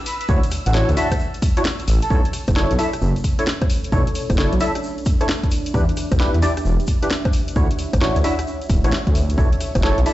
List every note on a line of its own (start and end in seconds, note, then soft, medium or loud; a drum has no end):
0.00 2.12 E6 medium
0.06 0.15 B5 medium
0.06 open hi-hat loud
0.06 shaker medium
0.21 0.26 B5 medium
0.21 closed hi-hat medium
0.21 shaker soft
0.29 0.41 D2 loud
0.29 0.39 D4 medium
0.29 0.39 E4 medium
0.29 0.39 F#4 medium
0.29 0.39 C#5 medium
0.29 kick loud
0.29 shaker medium
0.43 closed hi-hat medium
0.43 shaker soft
0.51 cross-stick soft
0.51 open hi-hat loud
0.51 shaker medium
0.66 0.84 A1 loud
0.66 0.75 F#5 loud
0.66 closed hi-hat medium
0.66 shaker soft
0.73 0.90 D4 medium
0.73 0.90 E4 medium
0.73 0.90 F#4 medium
0.73 0.90 C#5 loud
0.73 snare loud
0.73 shaker medium
0.89 0.95 D2 medium
0.89 closed hi-hat medium
0.89 shaker soft
0.97 1.07 D4 loud
0.97 1.07 E4 medium
0.97 1.07 F#4 medium
0.97 1.07 E5 loud
0.97 1.12 A5 medium
0.97 open hi-hat medium
0.97 shaker medium
1.11 kick medium
1.11 cross-stick medium
1.11 closed hi-hat medium
1.11 high bongo medium
1.11 shaker soft
1.19 shaker medium
1.34 closed hi-hat soft
1.34 shaker soft
1.42 kick loud
1.42 open hi-hat loud
1.42 shaker loud
1.56 1.63 D4 medium
1.56 1.63 E4 medium
1.56 1.63 F#4 medium
1.56 1.63 C#5 loud
1.56 closed hi-hat medium
1.56 shaker soft
1.65 snare loud
1.65 shaker medium
1.79 closed hi-hat soft
1.79 shaker soft
1.88 2.00 A1 loud
1.88 open hi-hat loud
1.88 shaker medium
2.02 2.08 A5 medium
2.02 closed hi-hat medium
2.02 shaker soft
2.10 2.23 B1 medium
2.10 2.21 D4 medium
2.10 7.56 D4 medium
2.10 2.21 E4 medium
2.10 2.21 A4 medium
2.10 2.21 C#5 medium
2.10 2.20 A5 medium
2.10 kick loud
2.10 shaker soft
2.25 closed hi-hat medium
2.30 6.36 A4 medium
2.30 6.36 C#5 medium
2.30 cross-stick soft
2.30 open hi-hat loud
2.30 shaker medium
2.47 2.65 F#1 medium
2.47 kick loud
2.47 closed hi-hat medium
2.47 high bongo medium
2.47 shaker soft
2.55 2.71 D4 loud
2.55 2.71 E4 medium
2.55 2.71 A4 medium
2.55 2.71 C#5 loud
2.55 snare loud
2.55 shaker soft
2.71 2.77 B1 medium
2.71 10.13 E5 medium
2.71 closed hi-hat soft
2.79 2.89 D4 loud
2.79 2.89 E4 medium
2.79 2.89 A4 medium
2.79 2.89 E5 loud
2.79 open hi-hat medium
2.79 shaker medium
2.93 cross-stick medium
2.93 closed hi-hat medium
2.93 shaker soft
3.01 3.13 F#1 medium
3.01 shaker medium
3.16 closed hi-hat soft
3.16 shaker soft
3.24 kick medium
3.24 open hi-hat loud
3.24 shaker medium
3.39 3.44 D4 medium
3.39 3.44 E4 medium
3.39 3.44 A4 medium
3.39 3.44 C#5 medium
3.39 closed hi-hat medium
3.39 shaker soft
3.47 snare loud
3.47 shaker soft
3.62 kick loud
3.62 cross-stick soft
3.62 closed hi-hat soft
3.62 high bongo medium
3.70 open hi-hat medium
3.70 shaker loud
3.84 closed hi-hat medium
3.84 shaker soft
3.92 4.04 B1 loud
3.92 4.02 D4 medium
3.92 4.02 E4 medium
3.92 4.02 A4 medium
3.92 4.02 C#5 medium
3.92 kick loud
3.92 shaker medium
4.07 closed hi-hat medium
4.15 open hi-hat loud
4.15 shaker medium
4.30 4.47 F#1 medium
4.30 kick loud
4.30 closed hi-hat medium
4.30 high bongo medium
4.30 shaker soft
4.38 4.53 D4 medium
4.38 4.53 E4 medium
4.38 4.53 A4 medium
4.38 4.53 C#5 loud
4.38 snare loud
4.38 shaker medium
4.53 4.59 B1 medium
4.53 closed hi-hat soft
4.60 4.71 D4 loud
4.60 4.71 E4 medium
4.60 4.71 A4 medium
4.60 4.71 E5 loud
4.60 open hi-hat medium
4.60 shaker loud
4.75 cross-stick medium
4.75 closed hi-hat medium
4.75 shaker soft
4.83 shaker medium
4.98 closed hi-hat soft
4.98 shaker soft
5.05 kick loud
5.05 open hi-hat loud
5.05 shaker loud
5.20 5.26 D4 medium
5.20 5.26 E4 medium
5.20 5.26 A4 medium
5.20 5.26 C#5 medium
5.20 closed hi-hat medium
5.20 high bongo medium
5.20 shaker soft
5.29 snare loud
5.29 shaker medium
5.43 kick medium
5.43 closed hi-hat soft
5.51 open hi-hat medium
5.51 shaker medium
5.65 closed hi-hat medium
5.65 shaker soft
5.74 5.86 E2 loud
5.74 5.84 D4 medium
5.74 5.84 E4 medium
5.74 5.84 G4 medium
5.74 5.84 B4 medium
5.74 kick loud
5.74 shaker medium
5.89 closed hi-hat soft
5.95 7.56 G4 medium
5.95 cross-stick soft
5.95 open hi-hat loud
5.95 shaker medium
6.12 6.29 B1 loud
6.12 kick loud
6.12 closed hi-hat medium
6.12 high bongo medium
6.12 shaker soft
6.20 6.35 D4 medium
6.20 6.35 E4 medium
6.20 6.35 G4 medium
6.20 6.35 B4 loud
6.20 snare loud
6.20 shaker soft
6.34 6.41 E2 medium
6.34 closed hi-hat soft
6.42 6.52 D4 loud
6.42 6.52 E4 medium
6.42 6.52 G4 medium
6.42 6.52 D5 loud
6.42 open hi-hat medium
6.42 shaker medium
6.57 cross-stick medium
6.57 closed hi-hat medium
6.57 shaker soft
6.65 6.77 E1 medium
6.65 shaker medium
6.80 closed hi-hat soft
6.80 shaker soft
6.87 kick medium
6.87 open hi-hat loud
6.87 shaker loud
7.02 7.08 D4 medium
7.02 7.08 E4 medium
7.02 7.08 G4 medium
7.02 7.08 B4 medium
7.02 closed hi-hat medium
7.02 shaker soft
7.11 snare loud
7.11 shaker soft
7.25 kick loud
7.25 cross-stick soft
7.25 closed hi-hat soft
7.25 high bongo medium
7.33 open hi-hat medium
7.33 shaker loud
7.48 closed hi-hat medium
7.48 shaker soft
7.56 7.68 D2 loud
7.56 7.66 D4 medium
7.56 7.66 E4 medium
7.56 7.66 F#4 medium
7.56 7.66 C#5 medium
7.56 10.13 C#5 medium
7.56 kick loud
7.56 shaker medium
7.71 closed hi-hat medium
7.79 open hi-hat medium
7.79 shaker medium
7.93 8.11 A1 loud
7.93 kick loud
7.93 closed hi-hat medium
7.93 high bongo medium
7.93 shaker soft
8.01 8.17 D4 medium
8.01 8.17 E4 medium
8.01 8.17 F#4 medium
8.01 10.08 F#4 medium
8.01 8.17 C#5 loud
8.01 snare loud
8.01 shaker medium
8.16 8.23 D2 medium
8.16 closed hi-hat soft
8.16 shaker soft
8.24 8.34 D4 loud
8.24 8.34 E4 medium
8.24 8.34 F#4 medium
8.24 8.34 E5 loud
8.24 open hi-hat medium
8.24 shaker medium
8.39 cross-stick medium
8.39 closed hi-hat medium
8.39 shaker soft
8.47 shaker medium
8.62 closed hi-hat soft
8.62 shaker soft
8.70 8.82 D1 medium
8.70 kick loud
8.70 open hi-hat medium
8.70 shaker loud
8.84 8.91 A1 medium
8.84 8.90 D4 medium
8.84 8.90 E4 medium
8.84 8.90 F#4 medium
8.84 8.90 C#5 medium
8.84 closed hi-hat medium
8.84 high bongo medium
8.84 shaker soft
8.92 snare loud
8.92 shaker medium
9.07 9.35 D2 medium
9.07 kick medium
9.07 closed hi-hat soft
9.15 open hi-hat medium
9.15 shaker loud
9.30 closed hi-hat medium
9.30 shaker soft
9.38 9.50 B1 loud
9.38 9.48 D4 medium
9.38 9.48 E4 medium
9.38 9.48 A4 medium
9.38 9.48 C#5 medium
9.38 10.13 C#6 medium
9.38 kick loud
9.38 shaker medium
9.52 closed hi-hat medium
9.61 cross-stick soft
9.61 open hi-hat loud
9.61 shaker medium
9.70 10.13 A4 medium
9.75 9.93 F#1 loud
9.75 kick loud
9.75 closed hi-hat medium
9.75 high bongo medium
9.75 shaker soft
9.83 9.99 D4 medium
9.83 9.99 E4 medium
9.83 9.99 A4 medium
9.83 9.99 C#5 loud
9.83 snare loud
9.83 shaker medium
9.97 10.05 B1 medium
9.97 10.13 D5 medium
9.97 closed hi-hat soft
10.06 10.13 D4 loud
10.06 10.13 E4 medium
10.06 10.13 A4 medium
10.06 10.13 E5 loud
10.06 open hi-hat medium
10.06 shaker loud